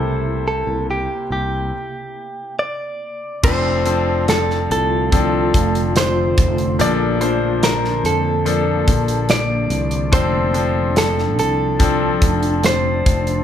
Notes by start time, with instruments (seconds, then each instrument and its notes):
Already playing: fretless electric bass C2, grand piano C3 A#3 E4 G4 C5, ambient pad C3 A#3 E4, clean electric guitar A4
0.48 clean electric guitar A4
0.67 fretless electric bass C2
0.91 clean electric guitar G4
1.30 fretless electric bass C2, clean electric guitar G4
2.59 clean electric guitar D5
3.43 fretless electric bass F1, ambient pad D3 A3 F4, grand piano F3 C4 D4 A4, clean electric guitar C5, kick, crash
3.86 grand piano F3 C4 D4 A4, closed hi-hat
4.28 clean electric guitar A4, snare, closed hi-hat
4.50 snare
4.71 fretless electric bass C2, clean electric guitar A4, closed hi-hat
5.12 grand piano F3 C4 D4 A4, kick, closed hi-hat
5.54 fretless electric bass F1, kick, closed hi-hat
5.75 closed hi-hat
5.96 clean electric guitar C5, snare, closed hi-hat
6.38 fretless electric bass F1, kick, closed hi-hat
6.58 closed hi-hat
6.79 fretless electric bass A#1, grand piano A#2 F3 A#3 D4 A4, ambient pad A#3 A5, clean electric guitar D5, closed hi-hat
7.20 grand piano F3 A#3 D4 C5, closed hi-hat
7.63 clean electric guitar A#4, snare, closed hi-hat
7.85 snare
8.04 fretless electric bass F2, clean electric guitar A4, closed hi-hat
8.45 grand piano F3 A#3 D4 A4, closed hi-hat
8.88 fretless electric bass A#1, kick, closed hi-hat
9.08 closed hi-hat
9.29 clean electric guitar D5, snare, closed hi-hat
9.70 fretless electric bass C2, closed hi-hat
9.91 closed hi-hat
10.12 fretless electric bass F1, grand piano F3 C4 D4 A4, ambient pad F3 D4, clean electric guitar C5, kick, closed hi-hat
10.54 grand piano F3 C4 D4 A4, closed hi-hat
10.96 clean electric guitar A4, snare, closed hi-hat
11.18 snare
11.38 fretless electric bass C2, clean electric guitar A4, closed hi-hat
11.79 grand piano F3 C4 D4 A4, kick, closed hi-hat
12.22 fretless electric bass F1, kick, closed hi-hat
12.43 closed hi-hat
12.64 clean electric guitar C5, snare, closed hi-hat
13.06 fretless electric bass F1, kick, closed hi-hat
13.27 closed hi-hat